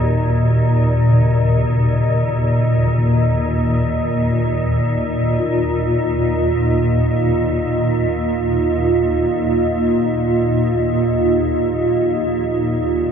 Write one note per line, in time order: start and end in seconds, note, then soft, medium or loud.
0.00 13.12 D#2 medium
0.00 13.12 A#2 medium
0.00 13.12 A#3 medium
0.00 13.12 D#4 medium
0.00 3.87 F#4 medium
0.00 13.12 D#5 medium
1.09 3.09 C#3 medium
2.86 9.92 D#3 medium
3.53 13.12 F4 loud
5.39 12.44 F4 medium